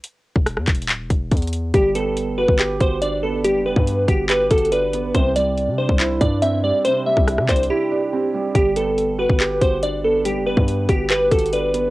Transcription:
0.04 closed hi-hat medium
0.36 0.59 E1 loud
0.36 kick loud
0.46 cross-stick medium
0.46 closed hi-hat medium
0.57 0.67 E2 loud
0.57 cross-stick medium
0.68 0.91 E1 loud
0.68 kick medium
0.68 clap medium
0.68 closed hi-hat medium
0.75 closed hi-hat medium
0.82 closed hi-hat soft
0.89 1.01 D1 loud
0.89 clap loud
0.89 closed hi-hat medium
1.00 1.10 E1 loud
1.10 1.31 E1 loud
1.10 kick medium
1.10 closed hi-hat medium
1.32 1.73 E2 loud
1.32 kick medium
1.32 closed hi-hat medium
1.37 closed hi-hat medium
1.42 closed hi-hat medium
1.48 closed hi-hat medium
1.53 closed hi-hat medium
1.74 2.46 G1 loud
1.74 2.81 G3 medium
1.74 1.90 G4 medium
1.74 kick loud
1.74 closed hi-hat medium
1.95 3.02 B3 medium
1.95 2.35 A4 medium
1.95 closed hi-hat medium
2.17 closed hi-hat medium
2.38 2.79 F#4 medium
2.38 2.78 B4 medium
2.49 2.79 G1 loud
2.49 kick medium
2.59 3.66 G4 loud
2.59 clap loud
2.59 closed hi-hat medium
2.81 3.56 G1 loud
2.81 3.87 F#4 medium
2.81 2.97 C5 medium
2.81 kick medium
2.81 closed hi-hat medium
3.02 4.08 D4 medium
3.02 3.18 D5 medium
3.02 closed hi-hat medium
3.23 3.64 B3 medium
3.23 3.39 A4 medium
3.44 4.51 G3 medium
3.44 3.61 G4 medium
3.44 closed hi-hat medium
3.55 3.75 F#1 loud
3.66 4.72 B3 medium
3.66 4.06 B4 medium
3.76 4.07 G2 loud
3.76 kick loud
3.87 closed hi-hat medium
4.08 4.49 G1 loud
4.08 4.50 F#4 medium
4.08 4.24 G4 medium
4.08 kick medium
4.08 closed hi-hat medium
4.29 5.15 G4 loud
4.29 4.46 B4 medium
4.29 clap loud
4.29 closed hi-hat medium
4.51 5.12 G1 loud
4.51 5.15 F#4 medium
4.51 4.67 A4 medium
4.51 kick medium
4.51 closed hi-hat medium
4.58 closed hi-hat medium
4.65 closed hi-hat soft
4.72 5.15 D4 medium
4.72 5.12 B4 medium
4.72 closed hi-hat medium
4.93 5.15 B3 medium
4.93 closed hi-hat medium
5.14 5.69 C2 loud
5.14 6.21 C3 medium
5.14 5.31 C5 medium
5.14 kick loud
5.14 closed hi-hat medium
5.36 6.42 G3 medium
5.36 5.76 D5 medium
5.36 closed hi-hat medium
5.57 closed hi-hat medium
5.68 5.88 C3 loud
5.78 6.20 D4 medium
5.78 6.18 C5 medium
5.89 6.20 C2 loud
5.89 kick medium
6.00 7.06 E4 loud
6.00 clap loud
6.00 closed hi-hat medium
6.21 6.72 G2 loud
6.21 7.28 D4 medium
6.21 6.37 D5 medium
6.21 kick medium
6.21 closed hi-hat medium
6.42 7.49 C4 medium
6.42 6.58 E5 medium
6.42 closed hi-hat medium
6.63 7.05 G3 medium
6.63 6.80 D5 medium
6.84 7.91 C3 medium
6.84 7.01 C5 loud
6.84 closed hi-hat medium
7.06 8.13 G3 medium
7.06 7.46 E5 medium
7.17 7.40 C2 loud
7.17 kick loud
7.27 cross-stick medium
7.27 closed hi-hat medium
7.38 7.48 C3 loud
7.38 cross-stick medium
7.48 7.70 C2 loud
7.48 7.90 D4 medium
7.48 7.65 C5 medium
7.48 kick loud
7.48 clap medium
7.48 closed hi-hat medium
7.56 closed hi-hat medium
7.63 closed hi-hat soft
7.70 8.55 E4 loud
7.70 8.51 G4 medium
7.91 8.55 D4 medium
8.13 8.55 C4 medium
8.34 8.53 G3 medium
8.54 9.27 G1 loud
8.54 9.61 G3 loud
8.54 8.71 G4 medium
8.54 kick loud
8.54 closed hi-hat medium
8.76 9.83 B3 medium
8.76 9.16 A4 medium
8.76 closed hi-hat medium
8.98 closed hi-hat medium
9.19 9.60 F#4 medium
9.19 9.59 B4 medium
9.29 9.60 G1 loud
9.29 kick medium
9.40 10.47 G4 loud
9.40 clap loud
9.40 closed hi-hat medium
9.61 10.37 G1 loud
9.61 10.68 F#4 medium
9.61 9.78 C5 medium
9.61 kick medium
9.61 closed hi-hat medium
9.83 10.89 D4 medium
9.83 9.99 D5 medium
9.83 closed hi-hat medium
10.04 10.45 B3 medium
10.04 10.20 A4 medium
10.25 11.32 G3 medium
10.25 10.41 G4 medium
10.25 closed hi-hat medium
10.36 10.56 F#1 loud
10.46 11.53 B3 medium
10.46 10.87 B4 medium
10.57 10.88 G2 loud
10.57 kick loud
10.68 closed hi-hat medium
10.89 11.30 G1 loud
10.89 11.30 F#4 medium
10.89 11.05 G4 medium
10.89 kick medium
10.89 closed hi-hat medium
11.10 11.90 G4 loud
11.10 11.27 B4 medium
11.10 clap loud
11.10 closed hi-hat medium
11.32 11.90 G1 loud
11.32 11.90 F#4 medium
11.32 11.48 A4 medium
11.32 kick medium
11.32 closed hi-hat medium
11.39 closed hi-hat medium
11.46 closed hi-hat soft
11.53 11.90 D4 medium
11.53 11.90 B4 medium
11.53 closed hi-hat medium
11.74 11.90 B3 medium
11.74 closed hi-hat medium

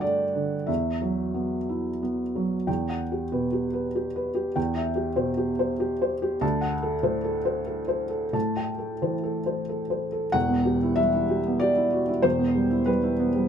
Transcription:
0.00 0.64 G2 medium
0.00 0.35 D3 soft
0.00 0.03 A3 soft
0.00 0.55 A3 soft
0.00 0.22 D4 soft
0.00 0.67 D5 medium
0.00 0.71 F#5 medium
0.00 0.71 G5 medium
0.35 0.68 D3 soft
0.67 2.64 E2 soft
0.67 2.01 E5 medium
1.01 1.55 F#3 soft
1.34 1.88 B3 soft
1.69 2.22 E4 soft
2.02 2.55 B3 soft
2.35 2.68 F#3 soft
2.67 4.52 E2 soft
2.67 3.02 G5 soft
2.90 3.24 F#5 soft
3.12 3.46 G4 soft
3.32 4.56 B2 soft
3.32 3.66 B4 soft
3.53 3.86 G4 soft
3.73 4.07 B4 soft
3.95 4.28 G4 soft
4.16 4.48 B4 soft
4.35 4.56 G4 soft
4.56 6.38 E2 medium
4.56 4.88 G5 medium
4.76 5.09 E5 soft
4.96 5.29 G4 soft
5.16 6.41 B2 soft
5.16 5.50 C5 medium
5.37 5.71 G4 medium
5.59 5.92 C5 medium
5.80 6.13 G4 medium
6.02 6.34 C5 medium
6.22 6.42 G4 medium
6.41 8.30 D2 medium
6.41 6.74 A5 medium
6.61 6.95 F#5 medium
6.82 7.16 A4 medium
7.03 8.31 A2 medium
7.03 7.37 C5 medium
7.24 7.59 A4 medium
7.45 7.80 C5 medium
7.66 8.02 A4 medium
7.88 8.24 C5 soft
8.10 8.33 A4 soft
8.33 10.30 A2 medium
8.33 8.70 A5 soft
8.57 8.93 G5 soft
8.78 9.15 A4 soft
9.02 10.35 E3 soft
9.02 9.38 C5 soft
9.24 9.59 A4 soft
9.46 9.82 C5 soft
9.69 10.05 A4 soft
9.90 10.26 C5 soft
10.12 10.34 A4 soft
10.32 12.20 E1 medium
10.32 12.20 E2 medium
10.32 10.98 F#5 medium
10.49 10.76 B3 soft
10.65 10.92 G4 soft
10.83 11.08 E4 soft
10.96 11.23 G3 medium
10.96 11.60 E5 medium
11.15 11.40 E4 medium
11.29 11.55 G4 soft
11.47 11.71 B3 soft
11.60 11.87 G4 medium
11.60 12.23 D5 medium
11.76 12.02 E4 soft
11.92 12.08 F#4 soft
12.08 12.24 E4 soft
12.22 13.48 E1 medium
12.22 13.48 E2 medium
12.22 12.87 C5 medium
12.39 12.65 B3 medium
12.55 12.81 G3 medium
12.70 12.97 E4 soft
12.86 13.13 G3 medium
12.86 13.48 B4 medium
13.03 13.29 E4 medium
13.20 13.45 B3 medium
13.35 13.48 G3 medium

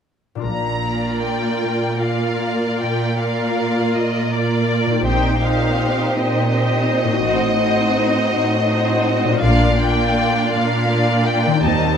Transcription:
0.35 4.25 A#2 soft
0.35 4.27 D4 soft
0.39 4.29 F4 soft
0.39 4.32 A#4 soft
0.45 1.19 A#1 soft
0.45 1.48 A#2 soft
0.45 1.19 A#5 medium
0.84 1.98 A#3 soft
0.84 1.98 F4 soft
0.84 1.98 A#4 soft
0.84 1.98 D5 soft
1.24 2.01 G5 soft
1.62 2.65 A#2 soft
2.00 3.15 A#3 soft
2.00 3.15 F4 soft
2.00 3.16 A#4 soft
2.00 3.16 D5 soft
2.00 2.79 F5 soft
2.79 3.81 A#2 soft
2.79 3.18 G5 soft
3.17 4.29 A#3 soft
3.17 4.29 F4 soft
3.17 4.29 A#4 soft
3.17 4.29 D5 soft
3.17 3.94 F5 soft
3.94 4.92 A#2 soft
3.94 4.31 D#5 medium
4.31 5.03 A#3 soft
4.31 5.03 F4 soft
4.31 5.03 A#4 soft
4.31 5.03 D5 soft
4.31 5.05 D5 soft
4.86 7.16 A#2 soft
4.90 7.07 D#4 soft
4.95 7.20 G4 soft
4.99 5.73 A#1 soft
4.99 7.16 C5 soft
5.05 6.01 A#2 soft
5.05 5.40 C4 soft
5.05 5.41 D#4 soft
5.05 5.40 G4 soft
5.05 5.40 C5 soft
5.05 5.40 G5 medium
5.41 6.48 C4 soft
5.41 6.49 D#4 soft
5.41 6.48 G4 soft
5.41 6.49 C5 soft
5.41 6.15 F5 medium
6.13 7.09 A#2 soft
6.13 9.41 D#5 medium
6.50 7.21 C4 soft
6.50 7.21 D#4 soft
6.50 7.21 G4 soft
6.50 7.21 C5 soft
7.04 9.36 A2 soft
7.09 9.38 D#4 soft
7.13 9.40 F#4 soft
7.17 7.90 A1 soft
7.17 9.42 C5 soft
7.22 8.18 A2 soft
7.22 7.56 C4 soft
7.22 7.56 D#4 soft
7.22 7.56 F#4 soft
7.22 7.56 C5 soft
7.57 8.65 C4 soft
7.57 8.65 D#4 soft
7.57 8.65 F#4 soft
7.57 8.65 C5 soft
8.31 9.28 A2 soft
8.67 9.40 C4 soft
8.67 9.40 D#4 soft
8.67 9.40 F#4 soft
8.67 9.40 C5 soft
9.24 11.58 A#2 soft
9.28 11.60 D4 soft
9.33 11.62 F4 soft
9.37 11.65 A#4 soft
9.41 10.13 A#1 medium
9.41 10.40 A#2 medium
9.41 9.79 A#3 soft
9.41 9.79 D4 soft
9.41 9.78 F4 soft
9.41 9.78 D5 soft
9.41 9.79 F5 medium
9.79 10.87 A#3 soft
9.79 10.87 D4 soft
9.79 10.86 F4 soft
9.79 10.86 D5 soft
9.79 10.53 G5 medium
10.52 11.50 A#2 medium
10.52 11.24 F5 medium
10.88 11.62 A#3 soft
10.88 11.62 D4 soft
10.88 11.62 F4 soft
10.88 11.62 D5 soft
11.25 11.64 G5 medium
11.46 11.97 D#3 soft
11.51 11.97 C4 soft
11.55 11.97 D#4 soft
11.59 11.97 G3 soft
11.59 11.97 C4 soft
11.59 11.97 G4 soft
11.63 11.97 D#2 soft
11.63 11.97 D#2 medium
11.63 11.97 D#4 soft
11.63 11.97 D#5 soft
11.63 11.97 A5 medium

